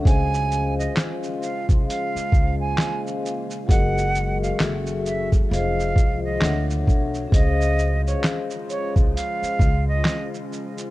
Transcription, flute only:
X:1
M:4/4
L:1/16
Q:"Swing 16ths" 1/4=66
K:Db
V:1 name="Flute"
a3 e z2 f z f3 a2 z3 | g3 f z2 _f z =f3 e2 z3 | e3 d z2 d z f3 e2 z3 |]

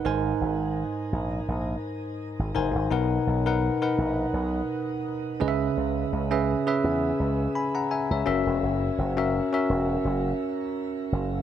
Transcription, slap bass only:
X:1
M:4/4
L:1/16
Q:"Swing 16ths" 1/4=84
K:B
V:1 name="Slap bass" clef=bass
G,,,2 G,,,3 z A,,,2 A,,,2 z3 G,,, F,,, G,,, | B,,,2 B,,,3 z A,,,2 B,,,2 z4 C,,2 | C,,2 C,,3 z E,,2 C,,2 z3 C,, F,,, E,,, | F,,,2 F,,,3 z E,,,2 F,,,2 z4 F,,,2 |]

